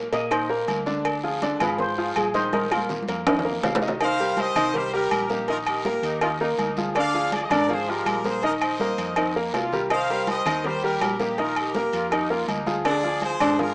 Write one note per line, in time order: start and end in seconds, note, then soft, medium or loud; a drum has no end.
0.12 0.64 A#2 loud
0.12 0.28 A#3 medium
0.12 0.28 A#4 medium
0.12 0.31 D#5 loud
0.12 high conga soft
0.12 low agogo medium
0.12 short guiro medium
0.31 0.46 D#3 medium
0.31 0.46 D#4 medium
0.31 0.50 C5 medium
0.31 0.46 D#5 medium
0.31 cowbell loud
0.31 high conga soft
0.31 low agogo loud
0.31 long guiro medium
0.31 claves medium
0.49 0.80 A#3 medium
0.49 0.80 A#4 medium
0.49 1.01 A#4 medium
0.49 high conga soft
0.68 1.54 D2 loud
0.68 cowbell medium
0.68 high conga medium
0.68 low agogo medium
0.68 short guiro medium
0.86 1.17 D3 medium
0.86 1.17 D4 medium
0.86 1.17 D5 medium
0.86 high conga medium
0.86 short guiro medium
1.05 cowbell loud
1.05 high conga soft
1.05 low agogo loud
1.05 long guiro medium
1.05 claves medium
1.23 1.39 F3 medium
1.23 1.39 F4 medium
1.23 1.39 G#4 medium
1.23 high conga soft
1.42 1.57 D3 medium
1.42 1.57 D4 medium
1.42 1.58 D5 medium
1.42 cowbell medium
1.42 high conga loud
1.42 low agogo medium
1.42 short guiro medium
1.60 2.12 G#2 loud
1.60 1.91 F3 medium
1.60 1.91 F4 medium
1.60 1.91 G#4 medium
1.60 1.79 B4 medium
1.60 low conga medium
1.60 low agogo loud
1.60 short guiro medium
1.60 claves medium
1.78 1.97 C5 loud
1.78 cowbell loud
1.78 high conga soft
1.78 low conga medium
1.78 long guiro medium
1.98 2.28 F3 medium
1.98 2.28 F4 medium
1.98 2.16 F4 medium
1.98 2.28 G#4 medium
1.98 high conga soft
2.16 3.02 A#1 loud
2.16 2.34 G#4 medium
2.16 cowbell medium
2.16 high conga medium
2.16 low agogo loud
2.16 short guiro medium
2.16 claves medium
2.34 2.49 D#3 medium
2.34 2.49 D#4 medium
2.34 2.52 C5 loud
2.34 2.49 D#5 medium
2.34 cowbell medium
2.34 high conga medium
2.34 short guiro medium
2.53 2.68 D#3 medium
2.53 2.68 D#4 medium
2.53 2.71 A#4 medium
2.53 2.68 D#5 medium
2.53 cowbell loud
2.53 high conga loud
2.53 low agogo medium
2.53 long guiro medium
2.65 high conga medium
2.71 3.01 A#3 medium
2.71 2.83 F4 loud
2.71 3.02 A#4 medium
2.71 low agogo loud
2.71 claves medium
2.77 high conga loud
2.89 cowbell medium
2.89 low conga loud
2.89 short guiro medium
3.02 high conga loud
3.08 3.59 F2 loud
3.08 3.23 A#3 medium
3.08 3.24 A#4 medium
3.08 low agogo medium
3.08 short guiro medium
3.27 3.42 D#3 medium
3.27 3.42 D#4 medium
3.27 3.42 D#5 medium
3.27 3.62 D#5 medium
3.27 cowbell loud
3.27 low conga medium
3.27 high timbale loud
3.27 low agogo loud
3.27 long guiro medium
3.27 claves medium
3.39 low conga medium
3.39 high timbale medium
3.45 3.75 A#3 medium
3.45 3.75 A#4 medium
3.51 low conga medium
3.63 4.50 C2 medium
3.63 3.90 F5 medium
3.63 cowbell medium
3.63 low conga loud
3.63 low timbale medium
3.63 low agogo medium
3.63 short guiro medium
3.75 low conga loud
3.75 low timbale medium
3.82 3.97 D#3 medium
3.82 3.97 D#4 medium
3.82 3.97 D#5 medium
3.82 short guiro medium
3.88 low conga medium
3.88 low timbale medium
4.00 4.16 D#3 medium
4.00 4.16 D#4 medium
4.00 4.36 C5 medium
4.00 4.16 D#5 medium
4.00 4.35 F5 loud
4.00 cowbell loud
4.00 high conga soft
4.00 low agogo loud
4.00 long guiro medium
4.00 claves medium
4.19 4.49 G3 medium
4.19 4.50 G4 medium
4.19 4.50 A#4 medium
4.19 high conga soft
4.37 4.75 C5 medium
4.37 4.75 D#5 loud
4.37 cowbell medium
4.37 high conga loud
4.37 low agogo medium
4.37 short guiro medium
4.55 5.07 C2 loud
4.55 4.71 D#3 loud
4.55 4.71 D#4 loud
4.55 4.72 D#5 loud
4.55 low conga medium
4.55 low agogo loud
4.55 short guiro medium
4.55 claves medium
4.74 4.90 G3 medium
4.74 4.90 G4 medium
4.74 4.93 G4 medium
4.74 4.90 A#4 medium
4.74 4.94 C5 loud
4.74 cowbell loud
4.74 high conga soft
4.74 low conga medium
4.74 long guiro medium
4.93 5.23 G3 medium
4.93 5.23 G4 medium
4.93 5.28 G4 medium
4.93 5.24 A#4 medium
4.93 5.28 A#4 loud
4.93 high conga soft
5.11 5.97 A#1 loud
5.11 cowbell medium
5.11 high conga medium
5.11 low agogo loud
5.11 short guiro medium
5.11 claves medium
5.29 5.45 A#3 medium
5.29 5.47 D#4 medium
5.29 5.48 G4 medium
5.29 5.45 A#4 medium
5.29 cowbell medium
5.29 high conga medium
5.29 short guiro medium
5.48 5.79 D#3 medium
5.48 5.79 D#4 loud
5.48 5.57 F4 medium
5.48 5.57 A#4 medium
5.48 5.79 D#5 medium
5.48 cowbell loud
5.48 low agogo medium
5.48 long guiro medium
5.66 6.36 G4 medium
5.66 6.36 A#4 medium
5.66 high conga soft
5.66 low agogo loud
5.66 claves medium
5.85 6.16 A#3 medium
5.85 6.16 A#4 medium
5.85 cowbell medium
5.85 high conga loud
5.85 short guiro medium
6.03 6.54 D#2 loud
6.03 6.20 D#4 loud
6.03 high conga soft
6.03 low agogo medium
6.03 short guiro medium
6.21 6.37 D#3 medium
6.21 6.37 D#4 medium
6.21 6.30 F4 loud
6.21 6.37 D#5 medium
6.21 cowbell loud
6.21 high conga soft
6.21 low agogo loud
6.21 long guiro medium
6.21 claves medium
6.40 6.71 A#3 medium
6.40 6.48 D#4 loud
6.40 6.71 A#4 medium
6.40 high conga soft
6.58 7.45 D2 loud
6.58 6.84 D#4 loud
6.58 cowbell medium
6.58 high conga medium
6.58 low agogo medium
6.58 short guiro medium
6.77 6.93 F3 medium
6.77 6.93 F4 medium
6.77 6.93 G#4 medium
6.77 high conga medium
6.77 short guiro medium
6.95 7.11 D3 medium
6.95 7.11 D4 medium
6.95 7.11 D5 medium
6.95 7.31 D5 medium
6.95 7.31 F5 loud
6.95 cowbell loud
6.95 high conga soft
6.95 low agogo loud
6.95 long guiro medium
6.95 claves medium
7.14 7.44 F3 medium
7.14 7.45 F4 medium
7.14 7.45 G#4 medium
7.14 high conga soft
7.32 7.40 G#4 medium
7.32 7.40 D5 loud
7.32 cowbell medium
7.32 high conga loud
7.32 low agogo medium
7.32 short guiro medium
7.41 7.47 D#5 medium
7.48 8.02 G#2 loud
7.48 7.66 D3 medium
7.48 7.66 D4 medium
7.48 7.70 A#4 medium
7.48 7.70 D5 loud
7.48 7.66 D5 loud
7.48 low conga medium
7.48 low agogo loud
7.48 short guiro medium
7.48 claves medium
7.69 7.85 F3 medium
7.69 7.85 F4 medium
7.69 7.85 G#4 medium
7.69 7.89 G#4 medium
7.69 7.89 C5 medium
7.69 cowbell loud
7.69 high conga soft
7.69 low conga medium
7.69 long guiro medium
7.87 8.19 F3 medium
7.87 8.19 G#3 medium
7.87 8.19 F4 medium
7.87 8.25 G4 medium
7.87 8.25 A#4 loud
7.87 high conga soft
8.06 8.92 A#1 medium
8.06 cowbell medium
8.06 high conga medium
8.06 low agogo loud
8.06 short guiro medium
8.06 claves medium
8.24 8.40 A#3 medium
8.24 8.44 G#4 medium
8.24 8.40 A#4 medium
8.24 8.44 C5 loud
8.24 cowbell medium
8.24 high conga medium
8.24 short guiro medium
8.43 8.74 D#3 medium
8.43 8.74 D#4 medium
8.43 8.52 A#4 medium
8.43 8.52 D#5 medium
8.43 8.74 D#5 medium
8.43 cowbell loud
8.43 high conga soft
8.43 low agogo medium
8.43 long guiro medium
8.61 9.32 C5 medium
8.61 9.32 D#5 medium
8.61 high conga soft
8.61 low agogo loud
8.61 claves medium
8.80 9.11 A#3 medium
8.80 9.11 A#4 medium
8.80 cowbell medium
8.80 high conga loud
8.80 short guiro medium
8.98 9.50 F2 loud
8.98 9.15 D#4 medium
8.98 low agogo medium
8.98 short guiro medium
9.16 9.32 D#3 medium
9.16 9.34 C4 loud
9.16 9.32 D#4 medium
9.16 9.32 D#5 medium
9.16 cowbell loud
9.16 low agogo loud
9.16 long guiro medium
9.16 claves medium
9.35 9.54 A#3 medium
9.35 9.66 A#3 medium
9.35 9.66 A#4 medium
9.54 10.40 C2 medium
9.54 9.81 F4 loud
9.54 cowbell medium
9.54 low timbale medium
9.54 low agogo medium
9.54 short guiro medium
9.72 9.88 G3 medium
9.72 9.88 G4 medium
9.72 9.88 A#4 medium
9.72 low conga medium
9.72 short guiro medium
9.90 10.06 D#3 medium
9.90 10.06 D#4 medium
9.90 10.26 C5 medium
9.90 10.06 D#5 medium
9.90 10.26 F5 loud
9.90 cowbell loud
9.90 high conga soft
9.90 low agogo loud
9.90 long guiro medium
9.90 claves medium
10.09 10.40 G3 medium
10.09 10.40 G4 medium
10.09 10.40 A#4 medium
10.09 high conga soft
10.27 10.63 C5 medium
10.27 10.63 D#5 loud
10.27 cowbell medium
10.27 high conga loud
10.27 low agogo medium
10.27 short guiro medium
10.46 10.97 D#2 loud
10.46 10.61 D#3 medium
10.46 10.61 D#4 loud
10.46 10.62 D#5 medium
10.46 low conga medium
10.46 low agogo loud
10.46 short guiro medium
10.46 claves medium
10.64 10.80 G3 medium
10.64 10.80 G4 medium
10.64 10.83 G4 medium
10.64 10.80 A#4 medium
10.64 10.84 C5 loud
10.64 cowbell loud
10.64 high conga soft
10.64 low conga medium
10.64 long guiro medium
10.83 11.13 G3 medium
10.83 11.14 G4 medium
10.83 11.18 G4 medium
10.83 11.14 A#4 medium
10.83 11.18 A#4 loud
10.83 high conga soft
11.01 11.88 A#1 loud
11.01 cowbell medium
11.01 high conga medium
11.01 low timbale medium
11.01 low agogo loud
11.01 short guiro medium
11.01 claves medium
11.19 11.35 A#3 medium
11.19 11.39 D#4 medium
11.19 11.39 G4 medium
11.19 11.35 A#4 medium
11.19 cowbell medium
11.19 high conga medium
11.19 short guiro medium
11.38 11.69 D#3 medium
11.38 11.69 D#4 medium
11.38 11.57 F4 medium
11.38 11.56 A#4 medium
11.38 11.69 D#5 medium
11.38 cowbell loud
11.38 high conga soft
11.38 low agogo medium
11.38 long guiro medium
11.56 12.27 G4 medium
11.56 12.27 A#4 medium
11.56 high conga soft
11.56 low agogo loud
11.56 claves medium
11.74 12.06 A#3 medium
11.74 12.06 A#4 medium
11.74 cowbell medium
11.74 high conga loud
11.74 short guiro medium
11.93 12.45 F2 loud
11.93 12.11 F4 loud
11.93 low agogo medium
11.93 short guiro medium
12.11 12.27 D#3 medium
12.11 12.31 D#4 loud
12.11 12.28 D#4 medium
12.11 12.28 D#5 medium
12.11 cowbell loud
12.11 high conga soft
12.11 low agogo loud
12.11 long guiro medium
12.11 claves medium
12.30 12.60 A#3 medium
12.30 12.49 F4 loud
12.30 12.61 A#4 medium
12.30 high conga soft
12.48 13.35 D2 loud
12.48 12.77 D#4 loud
12.48 cowbell medium
12.48 high conga loud
12.48 low agogo medium
12.48 short guiro medium
12.66 12.82 F3 medium
12.66 12.82 F4 medium
12.66 12.82 G#4 medium
12.66 high conga medium
12.66 short guiro medium
12.85 13.00 D3 medium
12.85 13.00 D4 medium
12.85 13.21 G#4 medium
12.85 13.01 D5 medium
12.85 13.20 D5 loud
12.85 cowbell loud
12.85 high conga soft
12.85 low agogo loud
12.85 long guiro medium
12.85 claves medium
13.04 13.34 F3 medium
13.04 13.34 F4 medium
13.04 13.34 G#4 medium
13.04 high conga soft
13.22 13.57 G#4 medium
13.22 13.57 C5 loud
13.22 cowbell medium
13.22 high conga loud
13.22 low agogo medium
13.22 short guiro medium
13.40 13.74 G#2 loud
13.40 13.56 D3 loud
13.40 13.56 D4 loud
13.40 13.56 D5 loud
13.40 low conga medium
13.40 low agogo loud
13.40 short guiro medium
13.40 claves medium
13.59 13.74 F3 medium
13.59 13.74 F4 medium
13.59 13.74 G#4 medium
13.59 13.74 A#4 medium
13.59 cowbell loud
13.59 high conga soft
13.59 low conga medium
13.59 long guiro medium